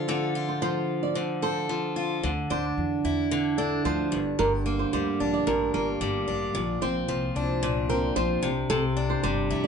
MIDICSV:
0, 0, Header, 1, 4, 480
1, 0, Start_track
1, 0, Tempo, 538117
1, 80, Time_signature, 4, 2, 24, 8
1, 8626, End_track
2, 0, Start_track
2, 0, Title_t, "Nylon-string guitar"
2, 0, Program_c, 0, 24
2, 71, Note_on_c, 0, 69, 86
2, 189, Note_off_c, 0, 69, 0
2, 433, Note_on_c, 0, 72, 57
2, 542, Note_off_c, 0, 72, 0
2, 552, Note_on_c, 0, 72, 63
2, 670, Note_off_c, 0, 72, 0
2, 917, Note_on_c, 0, 74, 69
2, 1035, Note_off_c, 0, 74, 0
2, 1035, Note_on_c, 0, 72, 72
2, 1263, Note_off_c, 0, 72, 0
2, 1274, Note_on_c, 0, 72, 61
2, 1391, Note_off_c, 0, 72, 0
2, 2238, Note_on_c, 0, 72, 68
2, 2352, Note_off_c, 0, 72, 0
2, 3191, Note_on_c, 0, 69, 66
2, 3423, Note_off_c, 0, 69, 0
2, 3435, Note_on_c, 0, 72, 72
2, 3775, Note_off_c, 0, 72, 0
2, 3916, Note_on_c, 0, 70, 86
2, 4032, Note_off_c, 0, 70, 0
2, 4274, Note_on_c, 0, 72, 58
2, 4387, Note_off_c, 0, 72, 0
2, 4398, Note_on_c, 0, 72, 66
2, 4513, Note_off_c, 0, 72, 0
2, 4760, Note_on_c, 0, 74, 69
2, 4874, Note_off_c, 0, 74, 0
2, 4880, Note_on_c, 0, 70, 73
2, 5108, Note_off_c, 0, 70, 0
2, 5120, Note_on_c, 0, 70, 66
2, 5234, Note_off_c, 0, 70, 0
2, 6082, Note_on_c, 0, 72, 76
2, 6195, Note_off_c, 0, 72, 0
2, 7040, Note_on_c, 0, 70, 66
2, 7269, Note_off_c, 0, 70, 0
2, 7278, Note_on_c, 0, 72, 75
2, 7618, Note_off_c, 0, 72, 0
2, 7758, Note_on_c, 0, 69, 85
2, 7873, Note_off_c, 0, 69, 0
2, 8115, Note_on_c, 0, 72, 59
2, 8225, Note_off_c, 0, 72, 0
2, 8236, Note_on_c, 0, 72, 65
2, 8353, Note_off_c, 0, 72, 0
2, 8597, Note_on_c, 0, 74, 73
2, 8626, Note_off_c, 0, 74, 0
2, 8626, End_track
3, 0, Start_track
3, 0, Title_t, "Steel-string acoustic guitar"
3, 0, Program_c, 1, 25
3, 0, Note_on_c, 1, 53, 58
3, 0, Note_on_c, 1, 65, 51
3, 76, Note_on_c, 1, 50, 74
3, 80, Note_on_c, 1, 69, 60
3, 310, Note_off_c, 1, 65, 0
3, 314, Note_on_c, 1, 65, 51
3, 549, Note_off_c, 1, 53, 0
3, 552, Note_on_c, 1, 53, 55
3, 1026, Note_off_c, 1, 50, 0
3, 1029, Note_on_c, 1, 50, 64
3, 1266, Note_off_c, 1, 69, 0
3, 1270, Note_on_c, 1, 69, 53
3, 1507, Note_off_c, 1, 53, 0
3, 1511, Note_on_c, 1, 53, 55
3, 1746, Note_off_c, 1, 65, 0
3, 1749, Note_on_c, 1, 65, 50
3, 1990, Note_off_c, 1, 50, 0
3, 1993, Note_on_c, 1, 50, 72
3, 2043, Note_off_c, 1, 53, 0
3, 2043, Note_off_c, 1, 65, 0
3, 2043, Note_off_c, 1, 69, 0
3, 2233, Note_on_c, 1, 62, 50
3, 2717, Note_on_c, 1, 64, 51
3, 2953, Note_off_c, 1, 50, 0
3, 2956, Note_on_c, 1, 50, 70
3, 3191, Note_off_c, 1, 62, 0
3, 3194, Note_on_c, 1, 62, 54
3, 3436, Note_on_c, 1, 53, 56
3, 3674, Note_on_c, 1, 43, 65
3, 3726, Note_off_c, 1, 53, 0
3, 3726, Note_off_c, 1, 64, 0
3, 3903, Note_off_c, 1, 43, 0
3, 3913, Note_on_c, 1, 43, 71
3, 4150, Note_off_c, 1, 62, 0
3, 4154, Note_on_c, 1, 58, 53
3, 4398, Note_on_c, 1, 55, 57
3, 4641, Note_on_c, 1, 62, 52
3, 4868, Note_off_c, 1, 43, 0
3, 4878, Note_on_c, 1, 43, 70
3, 5116, Note_off_c, 1, 58, 0
3, 5120, Note_on_c, 1, 58, 54
3, 5349, Note_off_c, 1, 55, 0
3, 5360, Note_on_c, 1, 55, 64
3, 5594, Note_off_c, 1, 62, 0
3, 5598, Note_on_c, 1, 62, 53
3, 5836, Note_off_c, 1, 43, 0
3, 5839, Note_on_c, 1, 46, 71
3, 5888, Note_off_c, 1, 55, 0
3, 5888, Note_off_c, 1, 58, 0
3, 6078, Note_off_c, 1, 50, 0
3, 6083, Note_on_c, 1, 60, 56
3, 6110, Note_off_c, 1, 62, 0
3, 6320, Note_on_c, 1, 53, 61
3, 6564, Note_on_c, 1, 62, 54
3, 6792, Note_off_c, 1, 46, 0
3, 6803, Note_on_c, 1, 46, 72
3, 7039, Note_off_c, 1, 60, 0
3, 7043, Note_on_c, 1, 60, 51
3, 7269, Note_off_c, 1, 53, 0
3, 7279, Note_on_c, 1, 53, 62
3, 7516, Note_on_c, 1, 48, 67
3, 7568, Note_off_c, 1, 53, 0
3, 7570, Note_off_c, 1, 46, 0
3, 7747, Note_off_c, 1, 48, 0
3, 7758, Note_on_c, 1, 48, 74
3, 7784, Note_off_c, 1, 62, 0
3, 7994, Note_off_c, 1, 60, 0
3, 7998, Note_on_c, 1, 62, 53
3, 8238, Note_on_c, 1, 55, 59
3, 8478, Note_on_c, 1, 64, 54
3, 8626, Note_off_c, 1, 48, 0
3, 8626, Note_off_c, 1, 55, 0
3, 8626, Note_off_c, 1, 62, 0
3, 8626, Note_off_c, 1, 64, 0
3, 8626, End_track
4, 0, Start_track
4, 0, Title_t, "Upright bass"
4, 0, Program_c, 2, 32
4, 1994, Note_on_c, 2, 38, 90
4, 2193, Note_off_c, 2, 38, 0
4, 2237, Note_on_c, 2, 38, 78
4, 2435, Note_off_c, 2, 38, 0
4, 2476, Note_on_c, 2, 40, 86
4, 2674, Note_off_c, 2, 40, 0
4, 2717, Note_on_c, 2, 40, 75
4, 3403, Note_off_c, 2, 40, 0
4, 3437, Note_on_c, 2, 38, 82
4, 3635, Note_off_c, 2, 38, 0
4, 3677, Note_on_c, 2, 31, 76
4, 3875, Note_off_c, 2, 31, 0
4, 3919, Note_on_c, 2, 31, 83
4, 4313, Note_off_c, 2, 31, 0
4, 4400, Note_on_c, 2, 38, 82
4, 4596, Note_off_c, 2, 38, 0
4, 4638, Note_on_c, 2, 34, 76
4, 4835, Note_off_c, 2, 34, 0
4, 4877, Note_on_c, 2, 33, 83
4, 5075, Note_off_c, 2, 33, 0
4, 5117, Note_on_c, 2, 31, 83
4, 5315, Note_off_c, 2, 31, 0
4, 5358, Note_on_c, 2, 31, 84
4, 5556, Note_off_c, 2, 31, 0
4, 5601, Note_on_c, 2, 33, 75
4, 5797, Note_off_c, 2, 33, 0
4, 5836, Note_on_c, 2, 34, 88
4, 6035, Note_off_c, 2, 34, 0
4, 6079, Note_on_c, 2, 34, 84
4, 6276, Note_off_c, 2, 34, 0
4, 6319, Note_on_c, 2, 36, 80
4, 6516, Note_off_c, 2, 36, 0
4, 6558, Note_on_c, 2, 36, 80
4, 7244, Note_off_c, 2, 36, 0
4, 7277, Note_on_c, 2, 34, 77
4, 7475, Note_off_c, 2, 34, 0
4, 7515, Note_on_c, 2, 36, 84
4, 7714, Note_off_c, 2, 36, 0
4, 7755, Note_on_c, 2, 36, 90
4, 8151, Note_off_c, 2, 36, 0
4, 8239, Note_on_c, 2, 31, 77
4, 8478, Note_on_c, 2, 40, 79
4, 8491, Note_off_c, 2, 31, 0
4, 8626, Note_off_c, 2, 40, 0
4, 8626, End_track
0, 0, End_of_file